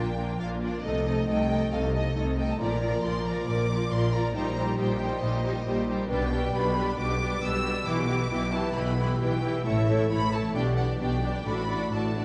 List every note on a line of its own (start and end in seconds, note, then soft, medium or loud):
0.00 0.35 A#1 soft
0.00 0.35 A#2 soft
0.00 0.86 A#2 soft
0.00 0.69 F3 soft
0.00 0.16 A#3 soft
0.00 0.16 D4 soft
0.00 0.15 F4 soft
0.00 0.23 F4 soft
0.00 0.15 A#4 soft
0.00 0.39 D5 soft
0.00 0.40 G5 medium
0.10 0.86 D4 soft
0.16 0.38 A#3 soft
0.16 0.38 D4 soft
0.16 0.39 F4 soft
0.16 0.38 A#4 soft
0.25 0.54 F4 soft
0.39 0.80 A#1 soft
0.39 0.79 A#2 soft
0.39 0.60 A#3 soft
0.39 0.60 D4 soft
0.39 0.61 F4 soft
0.39 0.61 A#4 soft
0.39 0.86 D5 soft
0.39 0.47 F5 medium
0.55 0.86 F4 soft
0.61 0.84 A#3 soft
0.61 0.83 D4 soft
0.61 0.84 F4 soft
0.61 0.84 A#4 soft
0.61 0.84 D5 medium
0.70 0.87 F3 soft
0.84 1.23 C2 soft
0.84 1.23 C3 soft
0.84 1.72 C3 soft
0.84 1.06 A3 soft
0.84 1.06 D#4 soft
0.84 1.05 A4 soft
0.84 1.28 D#5 medium
0.84 1.06 D#5 soft
1.00 1.57 C4 soft
1.07 1.28 A3 soft
1.07 1.27 D#4 soft
1.07 1.27 A4 soft
1.07 1.27 D#5 soft
1.14 1.43 A4 soft
1.28 1.67 C2 soft
1.28 1.68 C3 medium
1.28 1.49 A3 soft
1.28 1.49 D#4 soft
1.28 1.49 A4 soft
1.28 1.50 D#5 soft
1.28 2.16 D#5 soft
1.28 1.72 G5 medium
1.44 2.01 A4 soft
1.50 1.70 A3 soft
1.50 1.71 D#4 soft
1.50 1.71 A4 soft
1.50 1.71 D#5 soft
1.58 2.44 C4 soft
1.72 2.11 C2 soft
1.72 2.12 C3 soft
1.72 2.63 C3 soft
1.72 1.93 A3 soft
1.72 1.93 D#4 soft
1.72 1.93 A4 soft
1.72 1.93 D#5 soft
1.72 1.95 F5 medium
1.87 2.62 D#4 soft
1.94 2.14 A3 soft
1.94 2.14 D#4 soft
1.94 2.15 A4 soft
1.94 2.15 D#5 soft
1.94 2.17 D#5 medium
2.02 2.30 A4 soft
2.15 2.55 C2 soft
2.15 2.55 C3 soft
2.15 2.36 A3 soft
2.15 2.37 D#4 soft
2.15 2.37 A4 soft
2.15 2.37 D#5 soft
2.15 2.62 D#5 soft
2.31 2.62 A4 soft
2.38 2.60 A3 soft
2.38 2.60 D#4 soft
2.38 2.60 A4 soft
2.38 2.60 D#5 soft
2.38 2.49 G5 medium
2.46 2.62 C4 soft
2.51 2.61 A5 soft
2.59 2.99 A#1 medium
2.59 2.99 A#2 medium
2.59 3.45 A#2 soft
2.59 2.81 F3 soft
2.59 2.81 F4 soft
2.59 2.82 A#4 soft
2.59 2.81 D5 soft
2.59 3.04 A#5 medium
2.75 3.31 F3 soft
2.82 3.02 F3 soft
2.82 3.02 F4 soft
2.82 3.04 A#4 soft
2.82 3.03 D5 soft
2.89 3.17 F4 soft
3.03 3.43 A#1 soft
3.03 3.43 A#2 medium
3.03 3.25 F3 soft
3.03 3.24 F4 soft
3.03 3.26 A#4 soft
3.03 3.90 D5 soft
3.03 3.26 D5 soft
3.03 3.26 C6 medium
3.19 3.75 F4 soft
3.26 3.48 F3 soft
3.26 3.47 F4 soft
3.26 3.46 A#4 soft
3.26 3.47 D5 soft
3.26 3.48 A#5 medium
3.32 4.18 F3 soft
3.47 3.87 A#1 medium
3.47 4.33 A#2 soft
3.47 3.87 A#2 medium
3.47 3.68 F3 soft
3.47 3.69 F4 soft
3.47 3.69 A#4 soft
3.47 3.69 D5 soft
3.47 3.92 D6 medium
3.61 4.37 D4 soft
3.70 3.91 F3 soft
3.70 3.91 F4 soft
3.70 3.90 A#4 soft
3.70 3.90 D5 soft
3.76 4.05 F4 soft
3.91 4.30 A#1 medium
3.91 4.31 A#2 medium
3.91 4.12 F3 soft
3.91 4.12 F4 soft
3.91 4.12 A#4 soft
3.91 4.37 D5 soft
3.91 4.12 D5 soft
3.91 4.14 C6 medium
4.06 4.37 F4 soft
4.13 4.35 F3 soft
4.13 4.35 F4 soft
4.13 4.35 A#4 soft
4.13 4.35 D5 soft
4.13 4.35 A#5 medium
4.20 4.37 F3 soft
4.35 4.74 A#1 medium
4.35 5.21 A#2 soft
4.35 4.74 A#2 medium
4.35 4.56 G3 medium
4.35 4.56 D#4 medium
4.35 4.56 G4 medium
4.35 4.55 C5 medium
4.35 4.79 A#5 medium
4.49 5.06 A#3 soft
4.56 4.77 G3 soft
4.56 4.77 D#4 soft
4.56 4.77 G4 soft
4.56 4.77 C5 soft
4.64 4.92 G4 soft
4.78 5.18 A#1 medium
4.78 5.18 A#2 medium
4.78 5.00 G3 soft
4.78 5.00 D#4 soft
4.78 4.99 G4 soft
4.78 4.99 C5 medium
4.78 5.65 D#5 soft
4.78 5.22 G5 medium
4.93 5.50 G4 soft
5.00 5.21 G3 soft
5.00 5.21 D#4 soft
5.00 5.21 G4 soft
5.00 5.21 C5 medium
5.07 5.94 A#3 soft
5.22 5.61 A#1 medium
5.22 6.12 A#2 soft
5.22 5.62 A#2 medium
5.22 5.43 G3 soft
5.22 5.44 D#4 soft
5.22 5.43 G4 medium
5.22 5.43 C5 medium
5.22 5.88 D#5 medium
5.37 6.12 D#4 soft
5.44 5.65 G3 soft
5.44 5.65 D#4 soft
5.44 5.66 G4 soft
5.44 5.65 C5 soft
5.51 5.79 G4 soft
5.66 6.05 A#1 medium
5.66 6.05 A#2 soft
5.66 5.87 G3 soft
5.66 5.87 D#4 soft
5.66 5.87 G4 soft
5.66 5.88 C5 medium
5.66 6.12 D#5 soft
5.81 6.37 G4 soft
5.88 6.08 G3 soft
5.88 6.10 D#4 soft
5.88 6.08 G4 soft
5.88 6.10 C5 soft
5.96 6.12 A#3 soft
6.09 6.49 B1 medium
6.09 6.49 B2 medium
6.09 6.96 B2 medium
6.09 6.31 G3 medium
6.09 6.31 D4 medium
6.09 6.31 G4 medium
6.09 6.31 B4 medium
6.09 6.52 G5 medium
6.24 6.81 B3 soft
6.32 6.54 G3 medium
6.32 6.54 D4 medium
6.32 6.53 G4 medium
6.32 6.53 B4 soft
6.39 6.67 G4 soft
6.54 6.93 B1 medium
6.54 6.93 B2 medium
6.54 6.76 G3 soft
6.54 6.76 D4 soft
6.54 6.76 G4 medium
6.54 6.75 B4 medium
6.54 7.40 D5 soft
6.54 6.99 B5 medium
6.68 7.26 G4 soft
6.77 6.97 G3 soft
6.77 6.97 D4 soft
6.77 6.97 G4 soft
6.77 6.97 B4 medium
6.82 7.69 B3 soft
6.97 7.37 B1 medium
6.97 7.85 B2 medium
6.97 7.37 B2 medium
6.97 7.19 G3 soft
6.97 7.20 D4 soft
6.97 7.20 G4 medium
6.97 7.19 B4 medium
6.97 7.42 D6 medium
7.11 9.67 D4 soft
7.20 7.42 G3 soft
7.20 7.42 D4 soft
7.20 7.40 G4 soft
7.20 7.40 B4 soft
7.27 7.55 G4 soft
7.41 7.81 B1 medium
7.41 7.81 B2 medium
7.41 7.63 G3 soft
7.41 7.63 D4 soft
7.41 7.63 G4 soft
7.41 7.63 B4 medium
7.41 9.67 D5 medium
7.41 7.87 E6 medium
7.56 8.15 G4 soft
7.64 7.86 G3 medium
7.64 7.86 D4 soft
7.64 7.85 G4 soft
7.64 7.84 B4 soft
7.71 7.99 B3 soft
7.85 8.26 B1 medium
7.85 8.75 B2 soft
7.85 8.26 B2 medium
7.85 8.07 E3 medium
7.85 8.07 E4 medium
7.85 8.07 G4 medium
7.85 8.06 B4 medium
7.85 8.54 D6 medium
8.01 8.59 B3 soft
8.08 8.28 E3 medium
8.08 8.28 E4 soft
8.08 8.29 G4 soft
8.08 8.30 B4 soft
8.16 8.45 G4 soft
8.29 8.71 B1 medium
8.29 8.71 B2 medium
8.29 8.51 E3 medium
8.29 8.51 E4 medium
8.29 8.52 G4 soft
8.29 8.52 B4 medium
8.29 9.19 E5 soft
8.46 9.04 G4 soft
8.52 8.73 E3 soft
8.52 8.73 E4 soft
8.52 8.75 G4 medium
8.52 8.75 B4 medium
8.52 8.76 A5 medium
8.61 9.49 B3 soft
8.74 9.15 B1 medium
8.74 9.15 B2 medium
8.74 9.68 B2 soft
8.74 8.96 E3 soft
8.74 8.96 E4 soft
8.74 8.97 G4 medium
8.74 8.97 B4 medium
8.74 9.21 B5 medium
8.90 10.57 E4 soft
8.97 9.19 E3 soft
8.97 9.19 E4 soft
8.97 9.19 G4 soft
8.97 9.20 B4 soft
9.05 9.34 G4 soft
9.20 9.60 B1 medium
9.20 9.60 B2 medium
9.20 9.42 E3 soft
9.20 9.42 E4 soft
9.20 9.41 G4 soft
9.20 9.41 B4 soft
9.20 10.10 E5 soft
9.20 9.65 G5 medium
9.35 9.68 G4 soft
9.42 9.65 E3 soft
9.42 9.64 E4 medium
9.42 9.65 G4 soft
9.42 9.65 B4 soft
9.50 9.67 B3 soft
9.65 10.06 A1 medium
9.65 10.06 A2 medium
9.65 10.58 A2 soft
9.65 9.88 A3 medium
9.65 9.87 E4 medium
9.65 9.87 A4 medium
9.65 9.87 C#5 medium
9.65 10.10 E5 medium
9.81 10.40 E3 soft
9.88 10.10 A3 soft
9.88 10.10 E4 soft
9.88 10.10 A4 soft
9.88 10.10 C#5 soft
9.96 10.25 A4 soft
10.10 10.50 A1 medium
10.10 10.50 A2 medium
10.10 10.32 A3 soft
10.10 10.32 E4 soft
10.10 10.32 A4 soft
10.10 10.33 C#5 soft
10.10 10.58 E5 soft
10.10 10.33 B5 medium
10.26 10.58 A4 soft
10.33 10.55 A3 soft
10.33 10.55 E4 soft
10.33 10.55 A4 soft
10.33 10.56 C#5 soft
10.33 10.56 A5 medium
10.41 10.58 E3 soft
10.54 10.95 B1 medium
10.54 10.95 B2 soft
10.54 11.48 B2 medium
10.54 10.77 D4 soft
10.54 10.76 G4 medium
10.54 10.76 D5 soft
10.54 10.62 G5 medium
10.71 11.30 B3 soft
10.77 10.99 D4 soft
10.77 11.00 G4 soft
10.77 10.99 D5 soft
10.77 10.85 F#5 medium
10.86 11.15 G4 soft
11.00 11.41 B1 medium
11.00 11.41 B2 soft
11.00 11.21 D4 soft
11.00 11.22 G4 soft
11.00 11.22 D5 soft
11.00 11.91 D5 soft
11.00 11.45 G5 medium
11.16 11.48 G4 soft
11.22 11.43 D4 soft
11.22 11.46 G4 soft
11.22 11.46 D5 soft
11.31 11.48 B3 soft
11.44 11.87 A1 soft
11.44 11.87 A2 medium
11.44 12.25 A2 soft
11.44 11.67 A3 medium
11.44 11.67 D4 medium
11.44 11.68 F#4 soft
11.44 11.68 D5 soft
11.44 11.93 B5 medium
11.62 12.22 A3 soft
11.69 11.91 A3 soft
11.69 11.90 D4 soft
11.69 11.91 F#4 soft
11.69 11.91 D5 soft
11.77 12.06 F#4 soft
11.92 12.25 A1 soft
11.92 12.25 A2 medium
11.92 12.15 A3 soft
11.92 12.14 D4 soft
11.92 12.15 F#4 soft
11.92 12.25 D5 soft
11.92 12.15 D5 soft
11.92 12.25 A5 medium
12.08 12.25 F#4 soft
12.15 12.25 A3 soft
12.15 12.25 D4 soft
12.15 12.25 F#4 soft
12.15 12.25 D5 soft